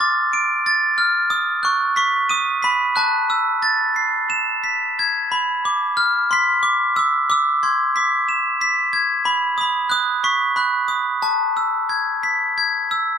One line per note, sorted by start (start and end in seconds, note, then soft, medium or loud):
0.00 0.62 D6 medium
0.00 0.97 F6 medium
0.00 0.65 A6 medium
0.33 1.31 D7 medium
0.66 1.32 A6 medium
0.98 1.31 F6 medium
1.30 2.29 D#6 medium
1.63 1.95 C#6 medium
1.63 2.94 F#6 medium
1.96 2.31 C#6 medium
1.96 2.61 B6 medium
2.29 2.61 D#6 medium
2.29 3.29 D#7 medium
2.62 2.98 B5 medium
2.62 3.29 B6 medium
2.96 4.26 A5 medium
2.96 3.29 F#6 medium
3.30 4.64 E6 medium
3.62 4.64 A6 medium
3.96 4.64 C7 medium
4.30 4.64 E7 medium
4.64 5.31 B6 medium
4.99 5.32 G#6 medium
5.32 6.65 B5 medium
5.65 5.99 D6 medium
5.97 6.32 F6 medium
6.31 6.65 C6 medium
6.31 7.31 B6 medium
6.63 6.98 D6 medium
6.96 7.28 D6 medium
6.96 7.30 E6 medium
7.30 7.64 D6 medium
7.30 8.62 E6 medium
7.63 7.97 C6 medium
7.63 8.92 G#6 medium
7.96 8.58 D6 medium
7.96 8.60 B6 medium
8.29 9.26 E7 medium
8.61 9.26 B6 medium
8.93 9.26 G#6 medium
9.25 9.60 B5 medium
9.58 9.90 B5 medium
9.58 9.90 D#6 medium
9.90 10.25 D#6 medium
9.90 10.56 F#6 medium
10.24 10.58 C#6 medium
10.24 11.24 B6 medium
10.56 12.54 B5 medium
10.56 11.23 F#6 medium
10.88 11.23 D#6 medium
11.22 11.90 A5 medium
11.57 11.90 E6 medium
11.89 12.56 G#6 medium
12.23 13.18 B6 medium
12.58 13.18 G#6 medium
12.91 13.18 E6 medium